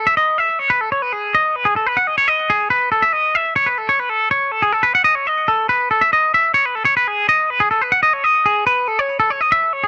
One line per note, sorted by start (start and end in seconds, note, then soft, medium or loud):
0.07 0.17 E5 medium
0.17 0.38 D#5 medium
0.38 0.59 E5 medium
0.59 0.70 C#5 medium
0.70 0.81 B4 medium
0.81 0.91 A4 medium
0.92 1.02 C#5 medium
1.02 1.13 B4 medium
1.13 1.34 G#4 medium
1.35 1.56 D#5 medium
1.56 1.66 B4 medium
1.65 1.76 G#4 medium
1.76 1.86 A4 medium
1.86 1.97 B4 medium
1.97 2.07 F#5 medium
2.07 2.17 D#5 medium
2.18 2.28 C#5 medium
2.28 2.50 D#5 medium
2.50 2.70 G#4 medium
2.70 2.91 B4 medium
2.92 3.03 A4 medium
3.03 3.13 E5 medium
3.13 3.35 D#5 medium
3.35 3.56 E5 medium
3.56 3.67 C#5 medium
3.66 3.78 B4 medium
3.78 3.89 A4 medium
3.89 4.00 C#5 medium
4.00 4.09 B4 medium
4.09 4.31 A4 medium
4.31 4.51 C#5 medium
4.51 4.63 A4 medium
4.62 4.72 G#4 medium
4.72 4.84 A4 medium
4.83 4.94 B4 medium
4.95 5.04 F#5 medium
5.04 5.15 D#5 medium
5.15 5.27 C#5 medium
5.27 5.48 D#5 medium
5.48 5.69 A4 medium
5.69 5.90 B4 medium
5.91 6.02 A4 medium
6.01 6.12 E5 medium
6.13 6.34 D#5 medium
6.34 6.54 E5 medium
6.54 6.66 C#5 medium
6.66 6.75 B4 medium
6.75 6.85 A4 medium
6.85 6.96 C#5 medium
6.97 7.07 B4 medium
7.07 7.28 G#4 medium
7.29 7.50 D#5 medium
7.50 7.61 B4 medium
7.60 7.70 G#4 medium
7.71 7.82 A4 medium
7.82 7.92 B4 medium
7.92 8.02 F#5 medium
8.03 8.13 D#5 medium
8.13 8.24 C#5 medium
8.24 8.45 D#5 medium
8.46 8.66 G#4 medium
8.67 8.88 B4 medium
8.88 8.99 A4 medium
8.99 9.19 C#5 medium
9.20 9.30 A4 medium
9.30 9.41 C#5 medium
9.41 9.51 D#5 medium
9.52 9.73 E5 loud
9.73 9.83 C#5 medium
9.84 9.88 G#4 medium